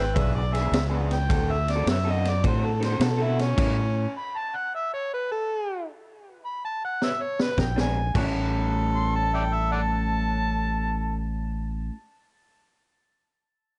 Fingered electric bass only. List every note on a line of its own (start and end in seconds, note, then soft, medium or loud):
0.00 0.14 G#1 medium
0.16 0.71 B1 medium
0.72 1.27 C#2 medium
1.30 1.85 D2 medium
1.86 2.42 F#2 medium
2.44 2.99 A2 medium
3.00 3.55 B2 medium
3.58 4.06 A2 medium
7.58 8.13 A#1 medium
8.15 11.89 A1 loud